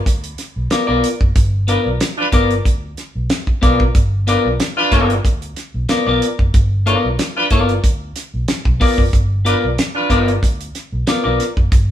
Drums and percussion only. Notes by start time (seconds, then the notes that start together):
0.06 kick, closed hi-hat
0.24 closed hi-hat
0.38 snare, closed hi-hat
0.70 snare, closed hi-hat
1.04 closed hi-hat
1.21 kick
1.36 kick, closed hi-hat
1.68 closed hi-hat
2.01 snare, closed hi-hat
2.32 kick, closed hi-hat
2.51 closed hi-hat
2.65 kick, closed hi-hat
2.97 snare, closed hi-hat
3.30 snare, closed hi-hat
3.47 kick
3.63 kick, snare, closed hi-hat
3.80 kick
3.95 kick, closed hi-hat
4.28 closed hi-hat
4.60 snare, closed hi-hat
4.92 kick, snare, closed hi-hat
5.10 closed hi-hat
5.25 kick, closed hi-hat
5.42 closed hi-hat
5.56 snare, closed hi-hat
5.89 snare, closed hi-hat
6.22 closed hi-hat
6.39 kick
6.54 kick, closed hi-hat
6.87 closed hi-hat
7.19 snare, closed hi-hat
7.50 kick, closed hi-hat
7.69 closed hi-hat
7.84 kick, closed hi-hat
8.16 snare, closed hi-hat
8.48 snare, closed hi-hat
8.65 kick
8.81 kick, open hi-hat
8.98 kick
9.13 kick, closed hi-hat
9.46 closed hi-hat
9.78 snare, closed hi-hat
10.10 kick, snare, closed hi-hat
10.28 closed hi-hat
10.43 kick, closed hi-hat
10.61 closed hi-hat
10.75 snare, closed hi-hat
11.07 snare, closed hi-hat
11.40 snare, closed hi-hat
11.57 kick
11.72 kick, closed hi-hat